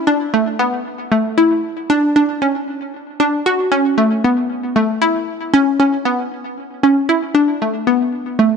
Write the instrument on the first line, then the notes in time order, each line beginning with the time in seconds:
synth arpeggio sound
0.07 D4
0.34 A3
0.59 B3
1.12 A3
1.38 E4
1.90 D4
2.16 D4
2.42 C#4
3.20 D4
3.46 F#4
3.72 C#4
3.98 A3
4.24 B3
4.76 A3
5.02 E4
5.54 C#4
5.80 C#4
6.05 B3
6.83 C#4
7.09 E4
7.35 D4
7.62 A3
7.87 B3
8.39 A3